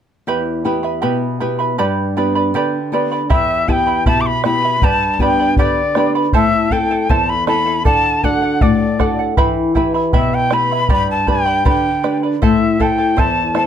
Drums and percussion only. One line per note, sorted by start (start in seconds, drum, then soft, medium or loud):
3.30 bombo low medium
3.68 bombo low medium
4.06 bombo low medium
4.44 bombo rim medium
4.82 bombo low medium
5.19 bombo low soft
5.57 bombo low medium
5.95 bombo rim soft
6.33 bombo low medium
6.70 bombo low soft
7.10 bombo low medium
7.47 bombo rim soft
7.85 bombo low medium
8.23 bombo low soft
8.61 bombo low medium
9.00 bombo rim soft
9.00 bombo low soft
9.37 bombo low medium
9.75 bombo low soft
10.13 bombo low medium
10.51 bombo rim soft
10.89 bombo low medium
11.27 bombo low soft
11.65 bombo low medium
12.04 bombo rim soft
12.42 bombo low medium
12.80 bombo low soft
13.18 bombo low medium
13.55 bombo rim soft